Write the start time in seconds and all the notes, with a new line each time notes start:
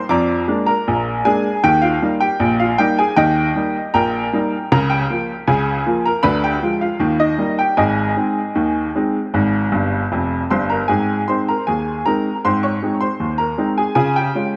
Already playing: C5 C6
0.09 F2 F3 D5 A#5 D6
0.48 G#3 A#3 D4
0.66 A#4 A#5
0.87 A#1 A#2
1.25 G#3 A#3 D4 G#4 G#5
1.64 D#2 D#3 G4 G5
1.82 F4 F5
2.02 G3 A#3 D#4
2.20 G4 G5
2.40 A#1 A#2
2.60 F4 F5
2.78 G3 A#3 D#4 G4 G5
2.99 G#4 G#5
3.16 D#2 D#3 G4 D#5 G5
3.55 G3 A#3 D#4
3.94 A#1 A#2 A#4 G5 A#5
4.33 G3 A#3 D#4
4.72 C#2 C#3 A#4 A#5
4.90 G4 G5
5.10 F3 A#3 F4
5.47 C#2 C#3 G#4 G#5
5.86 F3 A#3 F4
6.06 A#4 A#5
6.23 D2 D3 B4 B5
6.44 G4 G5
6.62 F3 G#3 F4
6.81 F4 F5
7.00 D#2 D#3
7.20 D#4 D#5
7.38 G3 A#3 D#4
7.59 G4 G5
7.77 G#1 G#2 G#4 D#5 G#5
8.17 G#3 C4 D#4
8.55 D#2 D#3
8.96 G#3 C4 D#4
9.34 G#1 G#2
9.72 G1 G2
10.12 F1 F2
10.50 G1 G2 C5 C6
10.70 A#4 A#5
10.88 G#2 C4 G#4 G#5
11.28 G#3 C4 D#4 C5 C6
11.48 A#4 A#5
11.67 D#2 G#4 G#5
12.06 G#3 C4 D#4 A#4 A#5
12.45 G#2 C4 C5 C6
12.63 C#5 C#6
12.83 G#3 C4 D#4
13.01 C5 C6
13.20 D#2
13.38 A#4 A#5
13.58 G#3 C4 D#4
13.78 G#4 G#5
13.95 C#3 F4 G#4 G#5
14.16 G4 G5
14.35 G#3 C#4 F4